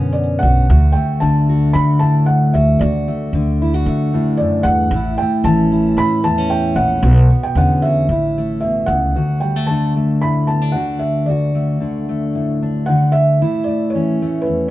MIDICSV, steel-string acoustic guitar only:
0, 0, Header, 1, 2, 480
1, 0, Start_track
1, 0, Key_signature, 2, "major"
1, 0, Tempo, 529568
1, 625, Time_signature, 4, 2, 24, 8
1, 13329, End_track
2, 0, Start_track
2, 0, Title_t, "Steel-string acoustic guitar"
2, 0, Program_c, 0, 25
2, 0, Note_on_c, 0, 42, 57
2, 0, Note_on_c, 0, 50, 51
2, 0, Note_on_c, 0, 59, 47
2, 0, Note_on_c, 0, 61, 50
2, 0, Note_on_c, 0, 66, 56
2, 383, Note_off_c, 0, 66, 0
2, 387, Note_on_c, 0, 66, 53
2, 597, Note_off_c, 0, 42, 0
2, 601, Note_off_c, 0, 59, 0
2, 601, Note_off_c, 0, 61, 0
2, 626, Note_on_c, 0, 38, 61
2, 628, Note_off_c, 0, 66, 0
2, 632, Note_on_c, 0, 66, 58
2, 870, Note_on_c, 0, 57, 51
2, 1097, Note_off_c, 0, 50, 0
2, 1101, Note_on_c, 0, 50, 51
2, 1108, Note_on_c, 0, 62, 46
2, 1347, Note_off_c, 0, 66, 0
2, 1351, Note_on_c, 0, 66, 63
2, 1590, Note_off_c, 0, 57, 0
2, 1593, Note_on_c, 0, 57, 50
2, 1818, Note_off_c, 0, 62, 0
2, 1822, Note_on_c, 0, 45, 55
2, 1829, Note_on_c, 0, 62, 49
2, 2297, Note_off_c, 0, 66, 0
2, 2308, Note_on_c, 0, 66, 55
2, 2515, Note_off_c, 0, 62, 0
2, 2515, Note_off_c, 0, 66, 0
2, 2530, Note_off_c, 0, 38, 0
2, 2540, Note_off_c, 0, 45, 0
2, 2541, Note_on_c, 0, 38, 59
2, 2551, Note_on_c, 0, 66, 61
2, 2786, Note_off_c, 0, 57, 0
2, 2789, Note_on_c, 0, 57, 49
2, 3018, Note_off_c, 0, 50, 0
2, 3033, Note_on_c, 0, 50, 53
2, 3042, Note_on_c, 0, 62, 49
2, 3264, Note_off_c, 0, 66, 0
2, 3279, Note_on_c, 0, 64, 62
2, 3389, Note_off_c, 0, 64, 0
2, 3389, Note_on_c, 0, 66, 47
2, 3511, Note_off_c, 0, 57, 0
2, 3514, Note_on_c, 0, 57, 54
2, 3745, Note_off_c, 0, 62, 0
2, 3748, Note_on_c, 0, 45, 55
2, 3756, Note_on_c, 0, 62, 53
2, 3978, Note_off_c, 0, 38, 0
2, 3987, Note_on_c, 0, 42, 54
2, 4219, Note_off_c, 0, 42, 0
2, 4223, Note_on_c, 0, 43, 56
2, 4436, Note_off_c, 0, 57, 0
2, 4437, Note_off_c, 0, 62, 0
2, 4460, Note_off_c, 0, 43, 0
2, 4462, Note_off_c, 0, 45, 0
2, 4462, Note_off_c, 0, 66, 0
2, 4463, Note_off_c, 0, 50, 0
2, 4480, Note_on_c, 0, 45, 66
2, 4490, Note_on_c, 0, 64, 62
2, 4726, Note_on_c, 0, 57, 55
2, 4946, Note_on_c, 0, 52, 56
2, 4954, Note_on_c, 0, 61, 51
2, 5172, Note_off_c, 0, 64, 0
2, 5183, Note_on_c, 0, 64, 65
2, 5423, Note_off_c, 0, 57, 0
2, 5434, Note_on_c, 0, 57, 53
2, 5651, Note_off_c, 0, 61, 0
2, 5651, Note_on_c, 0, 40, 55
2, 5655, Note_on_c, 0, 59, 52
2, 5666, Note_off_c, 0, 45, 0
2, 5780, Note_off_c, 0, 59, 0
2, 5780, Note_on_c, 0, 61, 44
2, 6130, Note_off_c, 0, 64, 0
2, 6141, Note_on_c, 0, 64, 59
2, 6343, Note_off_c, 0, 40, 0
2, 6351, Note_off_c, 0, 52, 0
2, 6355, Note_off_c, 0, 57, 0
2, 6368, Note_on_c, 0, 47, 62
2, 6371, Note_off_c, 0, 64, 0
2, 6375, Note_on_c, 0, 66, 61
2, 6377, Note_off_c, 0, 61, 0
2, 6615, Note_on_c, 0, 59, 49
2, 6847, Note_on_c, 0, 50, 52
2, 6851, Note_off_c, 0, 47, 0
2, 6853, Note_on_c, 0, 61, 44
2, 7094, Note_off_c, 0, 66, 0
2, 7114, Note_on_c, 0, 66, 63
2, 7303, Note_off_c, 0, 61, 0
2, 7306, Note_off_c, 0, 59, 0
2, 7315, Note_off_c, 0, 66, 0
2, 7331, Note_off_c, 0, 50, 0
2, 7343, Note_on_c, 0, 45, 59
2, 7351, Note_on_c, 0, 64, 56
2, 7593, Note_on_c, 0, 57, 48
2, 7819, Note_off_c, 0, 45, 0
2, 7828, Note_on_c, 0, 47, 50
2, 8060, Note_off_c, 0, 47, 0
2, 8064, Note_on_c, 0, 49, 54
2, 8275, Note_off_c, 0, 57, 0
2, 8296, Note_on_c, 0, 38, 55
2, 8299, Note_off_c, 0, 49, 0
2, 8302, Note_off_c, 0, 64, 0
2, 8305, Note_on_c, 0, 66, 48
2, 8536, Note_on_c, 0, 55, 42
2, 8664, Note_off_c, 0, 55, 0
2, 8664, Note_on_c, 0, 57, 37
2, 8788, Note_on_c, 0, 50, 45
2, 8797, Note_on_c, 0, 62, 40
2, 9020, Note_off_c, 0, 57, 0
2, 9032, Note_on_c, 0, 57, 46
2, 9273, Note_on_c, 0, 45, 50
2, 9497, Note_off_c, 0, 62, 0
2, 9501, Note_on_c, 0, 59, 44
2, 9622, Note_off_c, 0, 59, 0
2, 9622, Note_on_c, 0, 62, 38
2, 9735, Note_off_c, 0, 50, 0
2, 9741, Note_off_c, 0, 66, 0
2, 9746, Note_off_c, 0, 45, 0
2, 9746, Note_on_c, 0, 50, 45
2, 9752, Note_on_c, 0, 66, 49
2, 10198, Note_off_c, 0, 66, 0
2, 10218, Note_off_c, 0, 38, 0
2, 10222, Note_off_c, 0, 62, 0
2, 10229, Note_on_c, 0, 38, 55
2, 10237, Note_on_c, 0, 66, 54
2, 10463, Note_off_c, 0, 57, 0
2, 10466, Note_on_c, 0, 57, 46
2, 10686, Note_off_c, 0, 50, 0
2, 10697, Note_on_c, 0, 50, 42
2, 10706, Note_on_c, 0, 62, 41
2, 10953, Note_off_c, 0, 57, 0
2, 10956, Note_on_c, 0, 57, 51
2, 11192, Note_on_c, 0, 45, 49
2, 11426, Note_off_c, 0, 62, 0
2, 11444, Note_on_c, 0, 62, 47
2, 11662, Note_off_c, 0, 50, 0
2, 11669, Note_off_c, 0, 45, 0
2, 11673, Note_off_c, 0, 66, 0
2, 11677, Note_on_c, 0, 50, 52
2, 11688, Note_on_c, 0, 66, 51
2, 12124, Note_off_c, 0, 57, 0
2, 12127, Note_off_c, 0, 62, 0
2, 12128, Note_off_c, 0, 66, 0
2, 12150, Note_off_c, 0, 38, 0
2, 12152, Note_off_c, 0, 50, 0
2, 12158, Note_on_c, 0, 45, 60
2, 12163, Note_on_c, 0, 64, 57
2, 12401, Note_on_c, 0, 57, 47
2, 12634, Note_on_c, 0, 52, 44
2, 12643, Note_on_c, 0, 61, 45
2, 12875, Note_off_c, 0, 57, 0
2, 12889, Note_on_c, 0, 57, 51
2, 13112, Note_on_c, 0, 40, 46
2, 13114, Note_off_c, 0, 45, 0
2, 13329, Note_off_c, 0, 40, 0
2, 13329, Note_off_c, 0, 52, 0
2, 13329, Note_off_c, 0, 57, 0
2, 13329, Note_off_c, 0, 61, 0
2, 13329, Note_off_c, 0, 64, 0
2, 13329, End_track
0, 0, End_of_file